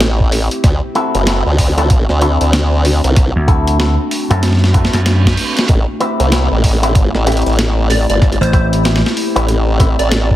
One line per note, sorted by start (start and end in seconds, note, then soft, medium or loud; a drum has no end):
0.00 0.49 A1 loud
0.00 0.60 A3 medium
0.00 0.60 C4 medium
0.00 0.60 E4 medium
0.00 0.60 G4 medium
0.00 0.12 C5 loud
0.00 snare loud
0.00 closed hi-hat medium
0.20 kick medium
0.32 open hi-hat medium
0.51 closed hi-hat medium
0.64 0.80 D2 loud
0.64 10.36 A3 medium
0.64 10.36 C4 medium
0.64 5.65 D4 medium
0.64 5.65 F#4 medium
0.64 kick loud
0.64 snare medium
0.64 closed hi-hat medium
0.95 1.24 C4 medium
0.95 1.24 E4 medium
0.95 1.24 F#4 medium
0.95 1.24 A4 medium
0.95 closed hi-hat soft
1.15 1.43 F#1 medium
1.15 closed hi-hat medium
1.27 1.42 C4 medium
1.27 1.42 E4 medium
1.27 1.42 F#4 medium
1.27 1.42 A4 medium
1.27 snare loud
1.27 closed hi-hat medium
1.46 2.06 D2 loud
1.58 kick medium
1.58 open hi-hat medium
1.77 1.87 C4 medium
1.77 1.87 E4 medium
1.77 1.87 F#4 medium
1.77 1.87 A4 loud
1.77 closed hi-hat soft
1.90 kick loud
1.90 closed hi-hat medium
2.09 2.38 D2 loud
2.09 snare soft
2.21 2.44 C4 medium
2.21 2.44 E4 medium
2.21 2.44 F#4 medium
2.21 2.44 A4 loud
2.21 closed hi-hat medium
2.41 3.01 D2 loud
2.41 closed hi-hat medium
2.53 snare loud
2.53 closed hi-hat medium
2.85 open hi-hat medium
3.04 3.33 C2 loud
3.04 closed hi-hat medium
3.16 kick loud
3.16 snare medium
3.16 closed hi-hat medium
3.36 3.96 D2 loud
3.47 3.77 C4 medium
3.47 3.77 E4 medium
3.47 3.77 F#4 medium
3.47 3.77 A4 medium
3.47 kick loud
3.47 closed hi-hat soft
3.67 closed hi-hat medium
3.79 3.95 C4 loud
3.79 3.95 E4 medium
3.79 3.95 F#4 medium
3.79 3.95 A4 loud
3.79 snare loud
3.79 closed hi-hat medium
4.11 open hi-hat medium
4.30 4.91 F#2 loud
4.30 4.40 C4 medium
4.30 4.40 E4 medium
4.30 4.40 F#4 medium
4.30 4.40 A4 loud
4.30 closed hi-hat medium
4.43 snare medium
4.43 closed hi-hat medium
4.43 reverse cymbal medium
4.48 snare medium
4.53 snare soft
4.57 snare soft
4.64 snare medium
4.74 4.97 C4 medium
4.74 4.97 E4 medium
4.74 4.97 F#4 medium
4.74 4.97 A4 medium
4.74 kick loud
4.74 closed hi-hat medium
4.85 snare medium
4.93 5.36 F#2 loud
4.93 snare medium
4.93 closed hi-hat medium
4.95 snare medium
5.06 snare medium
5.06 closed hi-hat medium
5.25 kick medium
5.25 snare loud
5.37 open hi-hat medium
5.57 snare loud
5.57 closed hi-hat medium
5.69 5.85 A1 loud
5.69 10.36 E4 medium
5.69 10.36 G4 medium
5.69 kick loud
5.69 snare medium
5.69 closed hi-hat medium
6.00 6.29 C4 medium
6.00 6.29 E4 medium
6.00 6.29 G4 medium
6.00 6.29 B4 medium
6.00 closed hi-hat soft
6.20 6.48 C2 loud
6.20 closed hi-hat medium
6.32 6.47 C4 medium
6.32 6.47 E4 medium
6.32 6.47 G4 medium
6.32 6.47 B4 medium
6.32 snare loud
6.32 closed hi-hat medium
6.51 6.94 A1 loud
6.64 kick medium
6.64 open hi-hat medium
6.83 6.93 C4 loud
6.83 6.93 E4 medium
6.83 6.93 G4 medium
6.83 6.93 B4 loud
6.83 closed hi-hat medium
6.94 7.12 G#1 loud
6.94 kick loud
6.94 closed hi-hat medium
7.15 7.43 A1 loud
7.15 snare soft
7.26 7.49 C4 medium
7.26 7.49 E4 medium
7.26 7.49 G4 medium
7.26 7.49 B4 medium
7.26 closed hi-hat medium
7.32 closed hi-hat soft
7.37 closed hi-hat soft
7.42 closed hi-hat soft
7.46 8.06 A1 loud
7.46 closed hi-hat medium
7.49 closed hi-hat soft
7.53 closed hi-hat soft
7.56 snare loud
7.56 closed hi-hat soft
7.59 closed hi-hat medium
7.90 8.03 D5 medium
7.90 open hi-hat medium
8.10 8.38 G1 loud
8.10 8.18 D5 medium
8.10 closed hi-hat medium
8.22 kick loud
8.22 snare medium
8.22 closed hi-hat soft
8.32 closed hi-hat soft
8.41 9.01 A1 loud
8.41 8.66 C5 loud
8.41 closed hi-hat medium
8.53 8.82 C4 medium
8.53 8.82 E4 medium
8.53 8.82 G4 medium
8.53 8.82 B4 medium
8.53 kick loud
8.53 closed hi-hat soft
8.73 closed hi-hat medium
8.85 9.00 C4 loud
8.85 9.00 E4 medium
8.85 9.00 G4 medium
8.85 9.00 B4 loud
8.85 snare loud
8.85 closed hi-hat medium
8.96 snare medium
9.06 snare medium
9.17 open hi-hat medium
9.36 9.96 A1 loud
9.36 9.45 C4 medium
9.36 9.45 E4 loud
9.36 9.45 G4 medium
9.36 9.45 B4 loud
9.36 closed hi-hat medium
9.48 closed hi-hat medium
9.79 10.02 C4 medium
9.79 10.02 E4 medium
9.79 10.02 G4 medium
9.79 10.02 B4 loud
9.79 kick loud
9.79 closed hi-hat medium
9.99 10.36 A1 loud
9.99 10.36 D5 loud
9.99 closed hi-hat medium
10.12 snare loud
10.12 closed hi-hat medium
10.31 kick medium